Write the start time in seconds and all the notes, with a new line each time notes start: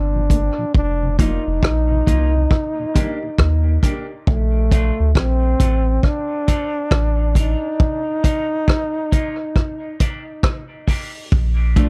Already playing: G1 D4
0.14 A#2 F3
0.30 A3 A#3 D4, kick, closed hi-hat
0.58 A#2 F3
0.75 F1 D4, kick
1.02 F2 C3
1.18 F3 A#3 D#4 F4, kick, closed hi-hat
1.47 F1
1.63 A#1, kick, cross-stick
1.91 F2 C3
2.07 C2 F3 A#3 D#4 F4, kick, closed hi-hat
2.35 F2 C3
2.51 kick, cross-stick
2.79 D#2 A#2
2.94 D#3 G3 A#3 D4 G4, kick, closed hi-hat
3.23 D#2 A#2
3.38 D#2, kick, cross-stick
3.67 D#2 A#2
3.83 D#3 G3 A#3 D4 G4, kick, closed hi-hat
4.27 A#1 A3, kick
4.55 A#2 F3
4.71 A3 A#3 D4 F4, kick, closed hi-hat
5.00 D2
5.15 A#1 C4, kick, cross-stick
5.59 A1 A3 A#3 D4 F4, kick, closed hi-hat
6.03 D4, kick, cross-stick
6.48 A3 D4 F4, kick, closed hi-hat
6.91 A1, kick, cross-stick
7.35 A3 D4 D#4 F4, kick, closed hi-hat
7.80 kick
8.23 A#3 D#4 F4, kick, closed hi-hat
8.68 kick, cross-stick
9.12 A#3 D#4 F4, kick, closed hi-hat
9.56 kick, cross-stick
10.00 A#3 D4 G4, kick, closed hi-hat
10.43 kick, cross-stick
10.87 D#3 G3 A#3 D4 G4, kick, open hi-hat
11.32 A#1, kick
11.76 A3 D4 F4, kick, closed hi-hat